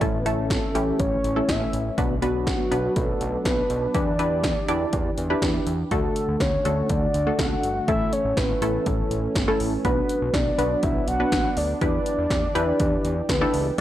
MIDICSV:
0, 0, Header, 1, 6, 480
1, 0, Start_track
1, 0, Key_signature, 2, "major"
1, 0, Tempo, 491803
1, 12, Time_signature, 4, 2, 24, 8
1, 13476, End_track
2, 0, Start_track
2, 0, Title_t, "Soft synth lead"
2, 0, Program_c, 0, 80
2, 185, Note_on_c, 0, 71, 65
2, 252, Note_on_c, 0, 69, 89
2, 267, Note_off_c, 0, 71, 0
2, 967, Note_on_c, 0, 73, 105
2, 982, Note_off_c, 0, 69, 0
2, 1450, Note_on_c, 0, 76, 97
2, 1465, Note_off_c, 0, 73, 0
2, 1931, Note_off_c, 0, 76, 0
2, 2171, Note_on_c, 0, 66, 92
2, 2889, Note_on_c, 0, 69, 97
2, 2904, Note_off_c, 0, 66, 0
2, 3362, Note_off_c, 0, 69, 0
2, 3368, Note_on_c, 0, 71, 95
2, 3848, Note_on_c, 0, 74, 110
2, 3863, Note_off_c, 0, 71, 0
2, 5290, Note_off_c, 0, 74, 0
2, 5776, Note_on_c, 0, 69, 94
2, 6253, Note_on_c, 0, 73, 94
2, 6267, Note_off_c, 0, 69, 0
2, 6732, Note_on_c, 0, 74, 106
2, 6746, Note_off_c, 0, 73, 0
2, 7212, Note_on_c, 0, 78, 109
2, 7227, Note_off_c, 0, 74, 0
2, 7686, Note_off_c, 0, 78, 0
2, 7692, Note_on_c, 0, 76, 108
2, 7932, Note_on_c, 0, 73, 97
2, 7946, Note_off_c, 0, 76, 0
2, 8171, Note_on_c, 0, 71, 93
2, 8185, Note_off_c, 0, 73, 0
2, 8653, Note_on_c, 0, 69, 89
2, 8667, Note_off_c, 0, 71, 0
2, 9372, Note_off_c, 0, 69, 0
2, 9617, Note_on_c, 0, 71, 96
2, 10095, Note_on_c, 0, 74, 99
2, 10110, Note_off_c, 0, 71, 0
2, 10574, Note_on_c, 0, 76, 106
2, 10589, Note_off_c, 0, 74, 0
2, 10808, Note_off_c, 0, 76, 0
2, 10813, Note_on_c, 0, 78, 117
2, 11295, Note_on_c, 0, 74, 99
2, 11309, Note_off_c, 0, 78, 0
2, 11527, Note_off_c, 0, 74, 0
2, 11533, Note_on_c, 0, 74, 101
2, 12933, Note_off_c, 0, 74, 0
2, 12976, Note_on_c, 0, 71, 85
2, 13420, Note_off_c, 0, 71, 0
2, 13476, End_track
3, 0, Start_track
3, 0, Title_t, "Analog polysynth"
3, 0, Program_c, 1, 90
3, 10, Note_on_c, 1, 61, 67
3, 10, Note_on_c, 1, 69, 80
3, 11, Note_on_c, 1, 57, 71
3, 11, Note_on_c, 1, 64, 67
3, 176, Note_off_c, 1, 57, 0
3, 176, Note_off_c, 1, 61, 0
3, 176, Note_off_c, 1, 69, 0
3, 177, Note_off_c, 1, 64, 0
3, 252, Note_on_c, 1, 57, 75
3, 252, Note_on_c, 1, 64, 67
3, 253, Note_on_c, 1, 61, 68
3, 253, Note_on_c, 1, 69, 84
3, 582, Note_off_c, 1, 57, 0
3, 582, Note_off_c, 1, 64, 0
3, 583, Note_off_c, 1, 61, 0
3, 583, Note_off_c, 1, 69, 0
3, 731, Note_on_c, 1, 61, 69
3, 731, Note_on_c, 1, 67, 85
3, 732, Note_on_c, 1, 57, 77
3, 732, Note_on_c, 1, 64, 71
3, 1144, Note_off_c, 1, 67, 0
3, 1145, Note_off_c, 1, 57, 0
3, 1145, Note_off_c, 1, 61, 0
3, 1145, Note_off_c, 1, 64, 0
3, 1329, Note_on_c, 1, 57, 75
3, 1329, Note_on_c, 1, 64, 66
3, 1329, Note_on_c, 1, 69, 83
3, 1330, Note_on_c, 1, 61, 67
3, 1743, Note_off_c, 1, 64, 0
3, 1743, Note_off_c, 1, 69, 0
3, 1744, Note_off_c, 1, 57, 0
3, 1744, Note_off_c, 1, 61, 0
3, 1930, Note_on_c, 1, 62, 71
3, 1930, Note_on_c, 1, 66, 66
3, 1930, Note_on_c, 1, 71, 83
3, 1931, Note_on_c, 1, 59, 74
3, 2096, Note_off_c, 1, 62, 0
3, 2096, Note_off_c, 1, 66, 0
3, 2096, Note_off_c, 1, 71, 0
3, 2097, Note_off_c, 1, 59, 0
3, 2168, Note_on_c, 1, 71, 87
3, 2169, Note_on_c, 1, 59, 79
3, 2169, Note_on_c, 1, 62, 73
3, 2170, Note_on_c, 1, 66, 71
3, 2501, Note_off_c, 1, 59, 0
3, 2501, Note_off_c, 1, 62, 0
3, 2501, Note_off_c, 1, 66, 0
3, 2501, Note_off_c, 1, 71, 0
3, 2649, Note_on_c, 1, 71, 83
3, 2650, Note_on_c, 1, 59, 73
3, 2650, Note_on_c, 1, 62, 70
3, 2650, Note_on_c, 1, 66, 67
3, 3311, Note_off_c, 1, 71, 0
3, 3312, Note_off_c, 1, 59, 0
3, 3312, Note_off_c, 1, 62, 0
3, 3312, Note_off_c, 1, 66, 0
3, 3851, Note_on_c, 1, 62, 73
3, 3851, Note_on_c, 1, 64, 68
3, 3851, Note_on_c, 1, 67, 69
3, 3851, Note_on_c, 1, 71, 82
3, 4016, Note_off_c, 1, 67, 0
3, 4017, Note_off_c, 1, 62, 0
3, 4017, Note_off_c, 1, 64, 0
3, 4017, Note_off_c, 1, 71, 0
3, 4090, Note_on_c, 1, 62, 78
3, 4090, Note_on_c, 1, 64, 70
3, 4090, Note_on_c, 1, 71, 87
3, 4091, Note_on_c, 1, 67, 69
3, 4421, Note_off_c, 1, 62, 0
3, 4421, Note_off_c, 1, 64, 0
3, 4421, Note_off_c, 1, 71, 0
3, 4422, Note_off_c, 1, 67, 0
3, 4572, Note_on_c, 1, 64, 83
3, 4572, Note_on_c, 1, 67, 81
3, 4572, Note_on_c, 1, 74, 99
3, 4573, Note_on_c, 1, 62, 90
3, 4985, Note_off_c, 1, 62, 0
3, 4985, Note_off_c, 1, 64, 0
3, 4985, Note_off_c, 1, 67, 0
3, 4985, Note_off_c, 1, 74, 0
3, 5173, Note_on_c, 1, 62, 85
3, 5173, Note_on_c, 1, 67, 82
3, 5173, Note_on_c, 1, 71, 96
3, 5175, Note_on_c, 1, 64, 80
3, 5585, Note_off_c, 1, 62, 0
3, 5585, Note_off_c, 1, 71, 0
3, 5586, Note_off_c, 1, 64, 0
3, 5586, Note_off_c, 1, 67, 0
3, 5773, Note_on_c, 1, 57, 73
3, 5773, Note_on_c, 1, 62, 66
3, 5773, Note_on_c, 1, 66, 70
3, 5774, Note_on_c, 1, 69, 84
3, 6268, Note_off_c, 1, 57, 0
3, 6268, Note_off_c, 1, 62, 0
3, 6268, Note_off_c, 1, 66, 0
3, 6269, Note_off_c, 1, 69, 0
3, 6492, Note_on_c, 1, 57, 77
3, 6492, Note_on_c, 1, 62, 69
3, 6492, Note_on_c, 1, 66, 68
3, 6493, Note_on_c, 1, 69, 83
3, 6905, Note_off_c, 1, 57, 0
3, 6905, Note_off_c, 1, 62, 0
3, 6905, Note_off_c, 1, 66, 0
3, 6905, Note_off_c, 1, 69, 0
3, 7092, Note_on_c, 1, 57, 74
3, 7092, Note_on_c, 1, 62, 66
3, 7093, Note_on_c, 1, 66, 66
3, 7093, Note_on_c, 1, 69, 81
3, 7505, Note_off_c, 1, 57, 0
3, 7505, Note_off_c, 1, 62, 0
3, 7505, Note_off_c, 1, 66, 0
3, 7505, Note_off_c, 1, 69, 0
3, 7693, Note_on_c, 1, 61, 70
3, 7693, Note_on_c, 1, 64, 66
3, 7694, Note_on_c, 1, 57, 75
3, 7694, Note_on_c, 1, 69, 82
3, 8188, Note_off_c, 1, 61, 0
3, 8188, Note_off_c, 1, 64, 0
3, 8189, Note_off_c, 1, 57, 0
3, 8189, Note_off_c, 1, 69, 0
3, 8413, Note_on_c, 1, 61, 69
3, 8413, Note_on_c, 1, 64, 67
3, 8413, Note_on_c, 1, 69, 86
3, 8414, Note_on_c, 1, 57, 74
3, 8991, Note_off_c, 1, 57, 0
3, 8991, Note_off_c, 1, 61, 0
3, 8991, Note_off_c, 1, 64, 0
3, 8991, Note_off_c, 1, 69, 0
3, 9251, Note_on_c, 1, 61, 85
3, 9252, Note_on_c, 1, 57, 93
3, 9252, Note_on_c, 1, 64, 83
3, 9252, Note_on_c, 1, 69, 104
3, 9499, Note_off_c, 1, 61, 0
3, 9500, Note_off_c, 1, 57, 0
3, 9500, Note_off_c, 1, 64, 0
3, 9500, Note_off_c, 1, 69, 0
3, 9610, Note_on_c, 1, 59, 76
3, 9611, Note_on_c, 1, 66, 71
3, 9612, Note_on_c, 1, 62, 66
3, 9612, Note_on_c, 1, 71, 83
3, 10107, Note_off_c, 1, 59, 0
3, 10107, Note_off_c, 1, 62, 0
3, 10107, Note_off_c, 1, 66, 0
3, 10107, Note_off_c, 1, 71, 0
3, 10330, Note_on_c, 1, 71, 81
3, 10331, Note_on_c, 1, 59, 78
3, 10331, Note_on_c, 1, 62, 69
3, 10332, Note_on_c, 1, 66, 67
3, 10744, Note_off_c, 1, 59, 0
3, 10744, Note_off_c, 1, 71, 0
3, 10745, Note_off_c, 1, 62, 0
3, 10745, Note_off_c, 1, 66, 0
3, 10930, Note_on_c, 1, 59, 72
3, 10930, Note_on_c, 1, 62, 67
3, 10930, Note_on_c, 1, 71, 83
3, 10931, Note_on_c, 1, 66, 68
3, 11344, Note_off_c, 1, 59, 0
3, 11344, Note_off_c, 1, 62, 0
3, 11344, Note_off_c, 1, 66, 0
3, 11344, Note_off_c, 1, 71, 0
3, 11530, Note_on_c, 1, 62, 75
3, 11530, Note_on_c, 1, 64, 69
3, 11531, Note_on_c, 1, 67, 70
3, 11531, Note_on_c, 1, 71, 84
3, 12026, Note_off_c, 1, 62, 0
3, 12027, Note_off_c, 1, 64, 0
3, 12027, Note_off_c, 1, 67, 0
3, 12027, Note_off_c, 1, 71, 0
3, 12250, Note_on_c, 1, 67, 86
3, 12250, Note_on_c, 1, 71, 102
3, 12251, Note_on_c, 1, 62, 90
3, 12251, Note_on_c, 1, 64, 86
3, 12829, Note_off_c, 1, 67, 0
3, 12829, Note_off_c, 1, 71, 0
3, 12830, Note_off_c, 1, 62, 0
3, 12830, Note_off_c, 1, 64, 0
3, 13091, Note_on_c, 1, 62, 92
3, 13091, Note_on_c, 1, 64, 87
3, 13091, Note_on_c, 1, 69, 101
3, 13092, Note_on_c, 1, 67, 83
3, 13339, Note_off_c, 1, 62, 0
3, 13339, Note_off_c, 1, 64, 0
3, 13339, Note_off_c, 1, 69, 0
3, 13340, Note_off_c, 1, 67, 0
3, 13476, End_track
4, 0, Start_track
4, 0, Title_t, "Analog synth pad"
4, 0, Program_c, 2, 89
4, 0, Note_on_c, 2, 57, 69
4, 11, Note_on_c, 2, 52, 73
4, 14, Note_on_c, 2, 61, 82
4, 1894, Note_off_c, 2, 57, 0
4, 1912, Note_off_c, 2, 52, 0
4, 1914, Note_off_c, 2, 61, 0
4, 1931, Note_on_c, 2, 62, 82
4, 1932, Note_on_c, 2, 54, 73
4, 1933, Note_on_c, 2, 59, 68
4, 3833, Note_off_c, 2, 54, 0
4, 3833, Note_off_c, 2, 59, 0
4, 3850, Note_on_c, 2, 52, 77
4, 3851, Note_on_c, 2, 67, 86
4, 5733, Note_off_c, 2, 62, 0
4, 5752, Note_off_c, 2, 52, 0
4, 5752, Note_off_c, 2, 67, 0
4, 5771, Note_on_c, 2, 50, 75
4, 5772, Note_on_c, 2, 57, 70
4, 5772, Note_on_c, 2, 66, 87
4, 7672, Note_off_c, 2, 50, 0
4, 7673, Note_off_c, 2, 66, 0
4, 7690, Note_on_c, 2, 61, 85
4, 7691, Note_on_c, 2, 52, 74
4, 9573, Note_off_c, 2, 57, 0
4, 9592, Note_off_c, 2, 52, 0
4, 9592, Note_off_c, 2, 61, 0
4, 9606, Note_on_c, 2, 54, 76
4, 9606, Note_on_c, 2, 59, 69
4, 9608, Note_on_c, 2, 62, 86
4, 11510, Note_off_c, 2, 54, 0
4, 11510, Note_off_c, 2, 59, 0
4, 11530, Note_on_c, 2, 52, 77
4, 11530, Note_on_c, 2, 67, 87
4, 13411, Note_off_c, 2, 62, 0
4, 13432, Note_off_c, 2, 52, 0
4, 13432, Note_off_c, 2, 67, 0
4, 13476, End_track
5, 0, Start_track
5, 0, Title_t, "Analog synth bass"
5, 0, Program_c, 3, 38
5, 12, Note_on_c, 3, 33, 104
5, 582, Note_off_c, 3, 33, 0
5, 733, Note_on_c, 3, 33, 103
5, 901, Note_off_c, 3, 33, 0
5, 974, Note_on_c, 3, 33, 111
5, 1141, Note_off_c, 3, 33, 0
5, 1212, Note_on_c, 3, 33, 99
5, 1380, Note_off_c, 3, 33, 0
5, 1451, Note_on_c, 3, 33, 105
5, 1619, Note_off_c, 3, 33, 0
5, 1691, Note_on_c, 3, 33, 100
5, 1859, Note_off_c, 3, 33, 0
5, 1932, Note_on_c, 3, 35, 103
5, 2502, Note_off_c, 3, 35, 0
5, 2651, Note_on_c, 3, 35, 100
5, 2819, Note_off_c, 3, 35, 0
5, 2893, Note_on_c, 3, 35, 106
5, 3061, Note_off_c, 3, 35, 0
5, 3132, Note_on_c, 3, 35, 108
5, 3300, Note_off_c, 3, 35, 0
5, 3370, Note_on_c, 3, 35, 101
5, 3538, Note_off_c, 3, 35, 0
5, 3611, Note_on_c, 3, 35, 103
5, 3779, Note_off_c, 3, 35, 0
5, 3851, Note_on_c, 3, 40, 99
5, 4421, Note_off_c, 3, 40, 0
5, 4573, Note_on_c, 3, 40, 98
5, 4740, Note_off_c, 3, 40, 0
5, 4813, Note_on_c, 3, 40, 108
5, 4981, Note_off_c, 3, 40, 0
5, 5052, Note_on_c, 3, 40, 99
5, 5220, Note_off_c, 3, 40, 0
5, 5291, Note_on_c, 3, 40, 101
5, 5459, Note_off_c, 3, 40, 0
5, 5532, Note_on_c, 3, 40, 103
5, 5700, Note_off_c, 3, 40, 0
5, 5771, Note_on_c, 3, 38, 114
5, 5940, Note_off_c, 3, 38, 0
5, 6131, Note_on_c, 3, 38, 97
5, 6216, Note_off_c, 3, 38, 0
5, 6249, Note_on_c, 3, 38, 100
5, 6418, Note_off_c, 3, 38, 0
5, 6492, Note_on_c, 3, 38, 97
5, 6660, Note_off_c, 3, 38, 0
5, 6732, Note_on_c, 3, 38, 104
5, 6900, Note_off_c, 3, 38, 0
5, 6972, Note_on_c, 3, 38, 95
5, 7140, Note_off_c, 3, 38, 0
5, 7210, Note_on_c, 3, 37, 95
5, 7379, Note_off_c, 3, 37, 0
5, 7451, Note_on_c, 3, 31, 94
5, 7619, Note_off_c, 3, 31, 0
5, 7691, Note_on_c, 3, 33, 107
5, 7860, Note_off_c, 3, 33, 0
5, 8050, Note_on_c, 3, 33, 103
5, 8134, Note_off_c, 3, 33, 0
5, 8169, Note_on_c, 3, 33, 98
5, 8338, Note_off_c, 3, 33, 0
5, 8411, Note_on_c, 3, 33, 97
5, 8579, Note_off_c, 3, 33, 0
5, 8652, Note_on_c, 3, 33, 110
5, 8820, Note_off_c, 3, 33, 0
5, 8890, Note_on_c, 3, 33, 98
5, 9059, Note_off_c, 3, 33, 0
5, 9130, Note_on_c, 3, 31, 92
5, 9299, Note_off_c, 3, 31, 0
5, 9371, Note_on_c, 3, 33, 99
5, 9539, Note_off_c, 3, 33, 0
5, 9610, Note_on_c, 3, 35, 108
5, 9779, Note_off_c, 3, 35, 0
5, 9971, Note_on_c, 3, 35, 101
5, 10055, Note_off_c, 3, 35, 0
5, 10089, Note_on_c, 3, 35, 99
5, 10258, Note_off_c, 3, 35, 0
5, 10330, Note_on_c, 3, 35, 99
5, 10499, Note_off_c, 3, 35, 0
5, 10572, Note_on_c, 3, 35, 115
5, 10740, Note_off_c, 3, 35, 0
5, 10810, Note_on_c, 3, 35, 101
5, 10979, Note_off_c, 3, 35, 0
5, 11049, Note_on_c, 3, 33, 107
5, 11218, Note_off_c, 3, 33, 0
5, 11292, Note_on_c, 3, 38, 104
5, 11460, Note_off_c, 3, 38, 0
5, 11530, Note_on_c, 3, 40, 103
5, 11699, Note_off_c, 3, 40, 0
5, 11891, Note_on_c, 3, 40, 95
5, 11976, Note_off_c, 3, 40, 0
5, 12009, Note_on_c, 3, 40, 99
5, 12178, Note_off_c, 3, 40, 0
5, 12252, Note_on_c, 3, 40, 105
5, 12420, Note_off_c, 3, 40, 0
5, 12493, Note_on_c, 3, 40, 107
5, 12660, Note_off_c, 3, 40, 0
5, 12733, Note_on_c, 3, 40, 101
5, 12901, Note_off_c, 3, 40, 0
5, 12971, Note_on_c, 3, 38, 104
5, 13140, Note_off_c, 3, 38, 0
5, 13214, Note_on_c, 3, 37, 95
5, 13381, Note_off_c, 3, 37, 0
5, 13476, End_track
6, 0, Start_track
6, 0, Title_t, "Drums"
6, 13, Note_on_c, 9, 36, 101
6, 13, Note_on_c, 9, 42, 68
6, 110, Note_off_c, 9, 36, 0
6, 110, Note_off_c, 9, 42, 0
6, 253, Note_on_c, 9, 42, 72
6, 351, Note_off_c, 9, 42, 0
6, 490, Note_on_c, 9, 36, 113
6, 495, Note_on_c, 9, 42, 63
6, 496, Note_on_c, 9, 38, 105
6, 588, Note_off_c, 9, 36, 0
6, 593, Note_off_c, 9, 42, 0
6, 594, Note_off_c, 9, 38, 0
6, 734, Note_on_c, 9, 42, 76
6, 832, Note_off_c, 9, 42, 0
6, 971, Note_on_c, 9, 42, 78
6, 973, Note_on_c, 9, 36, 115
6, 1069, Note_off_c, 9, 42, 0
6, 1071, Note_off_c, 9, 36, 0
6, 1214, Note_on_c, 9, 42, 71
6, 1311, Note_off_c, 9, 42, 0
6, 1451, Note_on_c, 9, 36, 101
6, 1451, Note_on_c, 9, 42, 79
6, 1455, Note_on_c, 9, 38, 114
6, 1549, Note_off_c, 9, 36, 0
6, 1549, Note_off_c, 9, 42, 0
6, 1552, Note_off_c, 9, 38, 0
6, 1692, Note_on_c, 9, 42, 69
6, 1789, Note_off_c, 9, 42, 0
6, 1932, Note_on_c, 9, 36, 106
6, 1932, Note_on_c, 9, 42, 69
6, 2029, Note_off_c, 9, 36, 0
6, 2030, Note_off_c, 9, 42, 0
6, 2171, Note_on_c, 9, 42, 70
6, 2268, Note_off_c, 9, 42, 0
6, 2409, Note_on_c, 9, 36, 116
6, 2412, Note_on_c, 9, 42, 64
6, 2413, Note_on_c, 9, 38, 102
6, 2507, Note_off_c, 9, 36, 0
6, 2510, Note_off_c, 9, 42, 0
6, 2511, Note_off_c, 9, 38, 0
6, 2652, Note_on_c, 9, 42, 77
6, 2750, Note_off_c, 9, 42, 0
6, 2890, Note_on_c, 9, 42, 79
6, 2893, Note_on_c, 9, 36, 110
6, 2988, Note_off_c, 9, 42, 0
6, 2990, Note_off_c, 9, 36, 0
6, 3132, Note_on_c, 9, 42, 68
6, 3229, Note_off_c, 9, 42, 0
6, 3370, Note_on_c, 9, 36, 99
6, 3371, Note_on_c, 9, 42, 84
6, 3374, Note_on_c, 9, 38, 119
6, 3468, Note_off_c, 9, 36, 0
6, 3469, Note_off_c, 9, 42, 0
6, 3472, Note_off_c, 9, 38, 0
6, 3610, Note_on_c, 9, 42, 68
6, 3708, Note_off_c, 9, 42, 0
6, 3850, Note_on_c, 9, 42, 71
6, 3851, Note_on_c, 9, 36, 105
6, 3948, Note_off_c, 9, 42, 0
6, 3949, Note_off_c, 9, 36, 0
6, 4091, Note_on_c, 9, 42, 71
6, 4188, Note_off_c, 9, 42, 0
6, 4329, Note_on_c, 9, 36, 113
6, 4332, Note_on_c, 9, 42, 64
6, 4333, Note_on_c, 9, 38, 101
6, 4426, Note_off_c, 9, 36, 0
6, 4429, Note_off_c, 9, 42, 0
6, 4430, Note_off_c, 9, 38, 0
6, 4572, Note_on_c, 9, 42, 77
6, 4670, Note_off_c, 9, 42, 0
6, 4810, Note_on_c, 9, 42, 80
6, 4812, Note_on_c, 9, 36, 114
6, 4907, Note_off_c, 9, 42, 0
6, 4910, Note_off_c, 9, 36, 0
6, 5052, Note_on_c, 9, 42, 71
6, 5149, Note_off_c, 9, 42, 0
6, 5290, Note_on_c, 9, 36, 101
6, 5292, Note_on_c, 9, 42, 82
6, 5295, Note_on_c, 9, 38, 120
6, 5388, Note_off_c, 9, 36, 0
6, 5389, Note_off_c, 9, 42, 0
6, 5393, Note_off_c, 9, 38, 0
6, 5530, Note_on_c, 9, 42, 68
6, 5628, Note_off_c, 9, 42, 0
6, 5771, Note_on_c, 9, 36, 103
6, 5771, Note_on_c, 9, 42, 70
6, 5868, Note_off_c, 9, 42, 0
6, 5869, Note_off_c, 9, 36, 0
6, 6012, Note_on_c, 9, 42, 71
6, 6110, Note_off_c, 9, 42, 0
6, 6249, Note_on_c, 9, 36, 110
6, 6252, Note_on_c, 9, 42, 64
6, 6253, Note_on_c, 9, 38, 105
6, 6347, Note_off_c, 9, 36, 0
6, 6350, Note_off_c, 9, 42, 0
6, 6351, Note_off_c, 9, 38, 0
6, 6492, Note_on_c, 9, 42, 79
6, 6590, Note_off_c, 9, 42, 0
6, 6729, Note_on_c, 9, 42, 80
6, 6732, Note_on_c, 9, 36, 113
6, 6827, Note_off_c, 9, 42, 0
6, 6830, Note_off_c, 9, 36, 0
6, 6971, Note_on_c, 9, 42, 70
6, 7069, Note_off_c, 9, 42, 0
6, 7210, Note_on_c, 9, 36, 105
6, 7211, Note_on_c, 9, 42, 84
6, 7214, Note_on_c, 9, 38, 118
6, 7308, Note_off_c, 9, 36, 0
6, 7309, Note_off_c, 9, 42, 0
6, 7312, Note_off_c, 9, 38, 0
6, 7451, Note_on_c, 9, 42, 68
6, 7549, Note_off_c, 9, 42, 0
6, 7692, Note_on_c, 9, 36, 109
6, 7692, Note_on_c, 9, 42, 70
6, 7789, Note_off_c, 9, 36, 0
6, 7789, Note_off_c, 9, 42, 0
6, 7932, Note_on_c, 9, 42, 72
6, 8029, Note_off_c, 9, 42, 0
6, 8169, Note_on_c, 9, 36, 117
6, 8172, Note_on_c, 9, 42, 66
6, 8173, Note_on_c, 9, 38, 104
6, 8266, Note_off_c, 9, 36, 0
6, 8270, Note_off_c, 9, 42, 0
6, 8271, Note_off_c, 9, 38, 0
6, 8413, Note_on_c, 9, 42, 78
6, 8510, Note_off_c, 9, 42, 0
6, 8649, Note_on_c, 9, 42, 80
6, 8652, Note_on_c, 9, 36, 111
6, 8747, Note_off_c, 9, 42, 0
6, 8750, Note_off_c, 9, 36, 0
6, 8892, Note_on_c, 9, 42, 71
6, 8990, Note_off_c, 9, 42, 0
6, 9130, Note_on_c, 9, 36, 100
6, 9131, Note_on_c, 9, 42, 80
6, 9135, Note_on_c, 9, 38, 120
6, 9228, Note_off_c, 9, 36, 0
6, 9229, Note_off_c, 9, 42, 0
6, 9232, Note_off_c, 9, 38, 0
6, 9371, Note_on_c, 9, 46, 70
6, 9468, Note_off_c, 9, 46, 0
6, 9611, Note_on_c, 9, 36, 105
6, 9611, Note_on_c, 9, 42, 72
6, 9708, Note_off_c, 9, 42, 0
6, 9709, Note_off_c, 9, 36, 0
6, 9852, Note_on_c, 9, 42, 72
6, 9949, Note_off_c, 9, 42, 0
6, 10089, Note_on_c, 9, 36, 112
6, 10092, Note_on_c, 9, 42, 65
6, 10093, Note_on_c, 9, 38, 108
6, 10186, Note_off_c, 9, 36, 0
6, 10190, Note_off_c, 9, 42, 0
6, 10191, Note_off_c, 9, 38, 0
6, 10333, Note_on_c, 9, 42, 81
6, 10430, Note_off_c, 9, 42, 0
6, 10568, Note_on_c, 9, 42, 81
6, 10572, Note_on_c, 9, 36, 115
6, 10666, Note_off_c, 9, 42, 0
6, 10669, Note_off_c, 9, 36, 0
6, 10810, Note_on_c, 9, 42, 73
6, 10908, Note_off_c, 9, 42, 0
6, 11049, Note_on_c, 9, 36, 103
6, 11049, Note_on_c, 9, 42, 84
6, 11053, Note_on_c, 9, 38, 118
6, 11147, Note_off_c, 9, 36, 0
6, 11147, Note_off_c, 9, 42, 0
6, 11150, Note_off_c, 9, 38, 0
6, 11290, Note_on_c, 9, 46, 70
6, 11388, Note_off_c, 9, 46, 0
6, 11530, Note_on_c, 9, 42, 72
6, 11531, Note_on_c, 9, 36, 104
6, 11628, Note_off_c, 9, 36, 0
6, 11628, Note_off_c, 9, 42, 0
6, 11771, Note_on_c, 9, 42, 72
6, 11869, Note_off_c, 9, 42, 0
6, 12009, Note_on_c, 9, 36, 118
6, 12013, Note_on_c, 9, 42, 67
6, 12014, Note_on_c, 9, 38, 106
6, 12107, Note_off_c, 9, 36, 0
6, 12110, Note_off_c, 9, 42, 0
6, 12111, Note_off_c, 9, 38, 0
6, 12253, Note_on_c, 9, 42, 78
6, 12350, Note_off_c, 9, 42, 0
6, 12489, Note_on_c, 9, 42, 83
6, 12493, Note_on_c, 9, 36, 113
6, 12587, Note_off_c, 9, 42, 0
6, 12590, Note_off_c, 9, 36, 0
6, 12733, Note_on_c, 9, 42, 74
6, 12831, Note_off_c, 9, 42, 0
6, 12971, Note_on_c, 9, 36, 107
6, 12972, Note_on_c, 9, 42, 82
6, 12976, Note_on_c, 9, 38, 123
6, 13069, Note_off_c, 9, 36, 0
6, 13070, Note_off_c, 9, 42, 0
6, 13073, Note_off_c, 9, 38, 0
6, 13212, Note_on_c, 9, 46, 70
6, 13310, Note_off_c, 9, 46, 0
6, 13476, End_track
0, 0, End_of_file